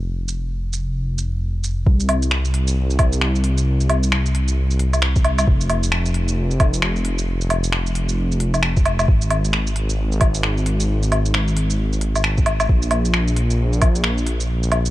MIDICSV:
0, 0, Header, 1, 3, 480
1, 0, Start_track
1, 0, Tempo, 451128
1, 64, Time_signature, 4, 2, 24, 8
1, 15859, End_track
2, 0, Start_track
2, 0, Title_t, "Detuned saw bass"
2, 0, Program_c, 0, 39
2, 0, Note_on_c, 0, 29, 80
2, 1963, Note_off_c, 0, 29, 0
2, 1985, Note_on_c, 0, 36, 88
2, 5806, Note_off_c, 0, 36, 0
2, 5823, Note_on_c, 0, 29, 90
2, 9644, Note_off_c, 0, 29, 0
2, 9662, Note_on_c, 0, 32, 90
2, 13484, Note_off_c, 0, 32, 0
2, 13504, Note_on_c, 0, 34, 86
2, 15859, Note_off_c, 0, 34, 0
2, 15859, End_track
3, 0, Start_track
3, 0, Title_t, "Drums"
3, 301, Note_on_c, 9, 82, 52
3, 407, Note_off_c, 9, 82, 0
3, 777, Note_on_c, 9, 82, 49
3, 884, Note_off_c, 9, 82, 0
3, 1257, Note_on_c, 9, 82, 50
3, 1364, Note_off_c, 9, 82, 0
3, 1743, Note_on_c, 9, 82, 49
3, 1849, Note_off_c, 9, 82, 0
3, 1984, Note_on_c, 9, 36, 122
3, 2091, Note_off_c, 9, 36, 0
3, 2128, Note_on_c, 9, 82, 47
3, 2221, Note_on_c, 9, 46, 76
3, 2221, Note_on_c, 9, 77, 54
3, 2235, Note_off_c, 9, 82, 0
3, 2328, Note_off_c, 9, 46, 0
3, 2328, Note_off_c, 9, 77, 0
3, 2366, Note_on_c, 9, 82, 57
3, 2459, Note_on_c, 9, 26, 104
3, 2472, Note_off_c, 9, 82, 0
3, 2566, Note_off_c, 9, 26, 0
3, 2605, Note_on_c, 9, 82, 47
3, 2701, Note_on_c, 9, 46, 73
3, 2712, Note_off_c, 9, 82, 0
3, 2808, Note_off_c, 9, 46, 0
3, 2847, Note_on_c, 9, 82, 56
3, 2953, Note_off_c, 9, 82, 0
3, 3089, Note_on_c, 9, 82, 32
3, 3181, Note_on_c, 9, 46, 72
3, 3181, Note_on_c, 9, 77, 61
3, 3185, Note_on_c, 9, 36, 104
3, 3196, Note_off_c, 9, 82, 0
3, 3287, Note_off_c, 9, 46, 0
3, 3287, Note_off_c, 9, 77, 0
3, 3291, Note_off_c, 9, 36, 0
3, 3327, Note_on_c, 9, 82, 60
3, 3420, Note_on_c, 9, 26, 109
3, 3434, Note_off_c, 9, 82, 0
3, 3527, Note_off_c, 9, 26, 0
3, 3569, Note_on_c, 9, 82, 32
3, 3658, Note_on_c, 9, 46, 69
3, 3675, Note_off_c, 9, 82, 0
3, 3765, Note_off_c, 9, 46, 0
3, 3807, Note_on_c, 9, 82, 58
3, 3913, Note_off_c, 9, 82, 0
3, 4049, Note_on_c, 9, 82, 47
3, 4145, Note_on_c, 9, 46, 69
3, 4145, Note_on_c, 9, 77, 54
3, 4155, Note_off_c, 9, 82, 0
3, 4251, Note_off_c, 9, 46, 0
3, 4251, Note_off_c, 9, 77, 0
3, 4290, Note_on_c, 9, 82, 58
3, 4384, Note_on_c, 9, 26, 112
3, 4397, Note_off_c, 9, 82, 0
3, 4490, Note_off_c, 9, 26, 0
3, 4531, Note_on_c, 9, 82, 47
3, 4626, Note_on_c, 9, 46, 72
3, 4637, Note_off_c, 9, 82, 0
3, 4732, Note_off_c, 9, 46, 0
3, 4768, Note_on_c, 9, 82, 58
3, 4874, Note_off_c, 9, 82, 0
3, 5007, Note_on_c, 9, 82, 31
3, 5102, Note_on_c, 9, 46, 69
3, 5114, Note_off_c, 9, 82, 0
3, 5208, Note_off_c, 9, 46, 0
3, 5249, Note_on_c, 9, 77, 37
3, 5249, Note_on_c, 9, 82, 59
3, 5341, Note_on_c, 9, 26, 109
3, 5356, Note_off_c, 9, 77, 0
3, 5356, Note_off_c, 9, 82, 0
3, 5447, Note_off_c, 9, 26, 0
3, 5487, Note_on_c, 9, 82, 33
3, 5491, Note_on_c, 9, 36, 110
3, 5581, Note_on_c, 9, 46, 68
3, 5581, Note_on_c, 9, 77, 58
3, 5594, Note_off_c, 9, 82, 0
3, 5597, Note_off_c, 9, 36, 0
3, 5687, Note_off_c, 9, 46, 0
3, 5687, Note_off_c, 9, 77, 0
3, 5729, Note_on_c, 9, 77, 67
3, 5729, Note_on_c, 9, 82, 59
3, 5824, Note_on_c, 9, 36, 127
3, 5836, Note_off_c, 9, 77, 0
3, 5836, Note_off_c, 9, 82, 0
3, 5930, Note_off_c, 9, 36, 0
3, 5967, Note_on_c, 9, 82, 47
3, 6060, Note_on_c, 9, 46, 70
3, 6060, Note_on_c, 9, 77, 51
3, 6074, Note_off_c, 9, 82, 0
3, 6167, Note_off_c, 9, 46, 0
3, 6167, Note_off_c, 9, 77, 0
3, 6207, Note_on_c, 9, 82, 59
3, 6297, Note_on_c, 9, 26, 107
3, 6313, Note_off_c, 9, 82, 0
3, 6404, Note_off_c, 9, 26, 0
3, 6444, Note_on_c, 9, 82, 46
3, 6537, Note_on_c, 9, 46, 70
3, 6551, Note_off_c, 9, 82, 0
3, 6643, Note_off_c, 9, 46, 0
3, 6685, Note_on_c, 9, 82, 58
3, 6792, Note_off_c, 9, 82, 0
3, 6927, Note_on_c, 9, 82, 32
3, 7022, Note_on_c, 9, 46, 68
3, 7022, Note_on_c, 9, 77, 60
3, 7025, Note_on_c, 9, 36, 113
3, 7033, Note_off_c, 9, 82, 0
3, 7129, Note_off_c, 9, 46, 0
3, 7129, Note_off_c, 9, 77, 0
3, 7131, Note_off_c, 9, 36, 0
3, 7168, Note_on_c, 9, 82, 59
3, 7259, Note_on_c, 9, 26, 117
3, 7274, Note_off_c, 9, 82, 0
3, 7365, Note_off_c, 9, 26, 0
3, 7406, Note_on_c, 9, 82, 33
3, 7498, Note_on_c, 9, 46, 68
3, 7513, Note_off_c, 9, 82, 0
3, 7605, Note_off_c, 9, 46, 0
3, 7645, Note_on_c, 9, 82, 59
3, 7751, Note_off_c, 9, 82, 0
3, 7886, Note_on_c, 9, 82, 45
3, 7982, Note_on_c, 9, 46, 73
3, 7982, Note_on_c, 9, 77, 52
3, 7992, Note_off_c, 9, 82, 0
3, 8088, Note_off_c, 9, 46, 0
3, 8088, Note_off_c, 9, 77, 0
3, 8126, Note_on_c, 9, 82, 55
3, 8219, Note_on_c, 9, 26, 112
3, 8232, Note_off_c, 9, 82, 0
3, 8325, Note_off_c, 9, 26, 0
3, 8367, Note_on_c, 9, 82, 42
3, 8462, Note_on_c, 9, 46, 70
3, 8473, Note_off_c, 9, 82, 0
3, 8568, Note_off_c, 9, 46, 0
3, 8606, Note_on_c, 9, 82, 56
3, 8712, Note_off_c, 9, 82, 0
3, 8849, Note_on_c, 9, 82, 31
3, 8939, Note_on_c, 9, 46, 71
3, 8955, Note_off_c, 9, 82, 0
3, 9046, Note_off_c, 9, 46, 0
3, 9086, Note_on_c, 9, 77, 36
3, 9086, Note_on_c, 9, 82, 56
3, 9178, Note_on_c, 9, 26, 110
3, 9192, Note_off_c, 9, 77, 0
3, 9192, Note_off_c, 9, 82, 0
3, 9284, Note_off_c, 9, 26, 0
3, 9327, Note_on_c, 9, 82, 32
3, 9330, Note_on_c, 9, 36, 112
3, 9422, Note_on_c, 9, 46, 68
3, 9422, Note_on_c, 9, 77, 57
3, 9434, Note_off_c, 9, 82, 0
3, 9436, Note_off_c, 9, 36, 0
3, 9528, Note_off_c, 9, 46, 0
3, 9528, Note_off_c, 9, 77, 0
3, 9567, Note_on_c, 9, 77, 63
3, 9567, Note_on_c, 9, 82, 55
3, 9662, Note_on_c, 9, 36, 123
3, 9673, Note_off_c, 9, 77, 0
3, 9673, Note_off_c, 9, 82, 0
3, 9769, Note_off_c, 9, 36, 0
3, 9805, Note_on_c, 9, 82, 44
3, 9901, Note_on_c, 9, 46, 73
3, 9901, Note_on_c, 9, 77, 51
3, 9911, Note_off_c, 9, 82, 0
3, 10007, Note_off_c, 9, 46, 0
3, 10007, Note_off_c, 9, 77, 0
3, 10050, Note_on_c, 9, 82, 55
3, 10141, Note_on_c, 9, 26, 105
3, 10157, Note_off_c, 9, 82, 0
3, 10247, Note_off_c, 9, 26, 0
3, 10289, Note_on_c, 9, 82, 43
3, 10383, Note_on_c, 9, 46, 76
3, 10395, Note_off_c, 9, 82, 0
3, 10489, Note_off_c, 9, 46, 0
3, 10529, Note_on_c, 9, 82, 53
3, 10636, Note_off_c, 9, 82, 0
3, 10768, Note_on_c, 9, 82, 30
3, 10861, Note_on_c, 9, 46, 75
3, 10861, Note_on_c, 9, 77, 57
3, 10867, Note_on_c, 9, 36, 110
3, 10875, Note_off_c, 9, 82, 0
3, 10967, Note_off_c, 9, 46, 0
3, 10967, Note_off_c, 9, 77, 0
3, 10973, Note_off_c, 9, 36, 0
3, 11008, Note_on_c, 9, 82, 53
3, 11102, Note_on_c, 9, 26, 110
3, 11114, Note_off_c, 9, 82, 0
3, 11208, Note_off_c, 9, 26, 0
3, 11252, Note_on_c, 9, 82, 31
3, 11344, Note_on_c, 9, 46, 74
3, 11358, Note_off_c, 9, 82, 0
3, 11450, Note_off_c, 9, 46, 0
3, 11493, Note_on_c, 9, 82, 55
3, 11599, Note_off_c, 9, 82, 0
3, 11735, Note_on_c, 9, 82, 44
3, 11830, Note_on_c, 9, 46, 76
3, 11830, Note_on_c, 9, 77, 53
3, 11841, Note_off_c, 9, 82, 0
3, 11937, Note_off_c, 9, 46, 0
3, 11937, Note_off_c, 9, 77, 0
3, 11976, Note_on_c, 9, 82, 54
3, 12066, Note_on_c, 9, 26, 101
3, 12082, Note_off_c, 9, 82, 0
3, 12173, Note_off_c, 9, 26, 0
3, 12212, Note_on_c, 9, 82, 42
3, 12306, Note_on_c, 9, 46, 80
3, 12318, Note_off_c, 9, 82, 0
3, 12412, Note_off_c, 9, 46, 0
3, 12451, Note_on_c, 9, 82, 54
3, 12557, Note_off_c, 9, 82, 0
3, 12691, Note_on_c, 9, 82, 29
3, 12781, Note_on_c, 9, 46, 75
3, 12797, Note_off_c, 9, 82, 0
3, 12888, Note_off_c, 9, 46, 0
3, 12933, Note_on_c, 9, 77, 37
3, 12933, Note_on_c, 9, 82, 55
3, 13023, Note_on_c, 9, 26, 103
3, 13040, Note_off_c, 9, 77, 0
3, 13040, Note_off_c, 9, 82, 0
3, 13129, Note_off_c, 9, 26, 0
3, 13168, Note_on_c, 9, 82, 31
3, 13172, Note_on_c, 9, 36, 100
3, 13258, Note_on_c, 9, 46, 76
3, 13258, Note_on_c, 9, 77, 58
3, 13274, Note_off_c, 9, 82, 0
3, 13279, Note_off_c, 9, 36, 0
3, 13364, Note_off_c, 9, 46, 0
3, 13364, Note_off_c, 9, 77, 0
3, 13405, Note_on_c, 9, 77, 68
3, 13405, Note_on_c, 9, 82, 55
3, 13504, Note_on_c, 9, 36, 111
3, 13512, Note_off_c, 9, 77, 0
3, 13512, Note_off_c, 9, 82, 0
3, 13611, Note_off_c, 9, 36, 0
3, 13644, Note_on_c, 9, 82, 44
3, 13734, Note_on_c, 9, 46, 82
3, 13734, Note_on_c, 9, 77, 55
3, 13750, Note_off_c, 9, 82, 0
3, 13840, Note_off_c, 9, 46, 0
3, 13840, Note_off_c, 9, 77, 0
3, 13885, Note_on_c, 9, 82, 55
3, 13976, Note_on_c, 9, 26, 101
3, 13992, Note_off_c, 9, 82, 0
3, 14083, Note_off_c, 9, 26, 0
3, 14126, Note_on_c, 9, 82, 43
3, 14220, Note_on_c, 9, 46, 77
3, 14232, Note_off_c, 9, 82, 0
3, 14326, Note_off_c, 9, 46, 0
3, 14368, Note_on_c, 9, 82, 54
3, 14474, Note_off_c, 9, 82, 0
3, 14608, Note_on_c, 9, 82, 30
3, 14700, Note_on_c, 9, 46, 78
3, 14700, Note_on_c, 9, 77, 64
3, 14704, Note_on_c, 9, 36, 101
3, 14714, Note_off_c, 9, 82, 0
3, 14806, Note_off_c, 9, 46, 0
3, 14806, Note_off_c, 9, 77, 0
3, 14811, Note_off_c, 9, 36, 0
3, 14846, Note_on_c, 9, 82, 57
3, 14935, Note_on_c, 9, 26, 102
3, 14952, Note_off_c, 9, 82, 0
3, 15042, Note_off_c, 9, 26, 0
3, 15084, Note_on_c, 9, 82, 30
3, 15178, Note_on_c, 9, 46, 76
3, 15191, Note_off_c, 9, 82, 0
3, 15285, Note_off_c, 9, 46, 0
3, 15326, Note_on_c, 9, 82, 57
3, 15432, Note_off_c, 9, 82, 0
3, 15568, Note_on_c, 9, 82, 48
3, 15659, Note_on_c, 9, 46, 76
3, 15659, Note_on_c, 9, 77, 56
3, 15675, Note_off_c, 9, 82, 0
3, 15765, Note_off_c, 9, 46, 0
3, 15765, Note_off_c, 9, 77, 0
3, 15806, Note_on_c, 9, 82, 57
3, 15859, Note_off_c, 9, 82, 0
3, 15859, End_track
0, 0, End_of_file